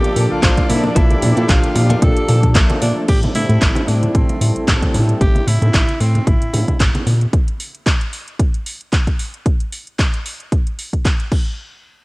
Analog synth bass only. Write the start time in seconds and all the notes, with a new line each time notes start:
0.16 A#2
0.31 A#1
0.43 A#1
0.69 A#2
0.96 A#1
1.22 A#2
1.37 A#2
1.49 A#1
1.76 A#2
2.02 A#1
2.29 A#2
2.55 A#1
2.82 A#2
3.08 A1
3.35 A2
3.49 A2
3.62 A1
3.88 A2
4.15 A1
4.41 A2
4.56 A1
4.68 A1
4.94 A2
5.21 A1
5.47 A2
5.62 A2
5.74 A1
6.00 A2
6.27 A1
6.42 A2
6.54 A2
6.80 A1
7.07 A#2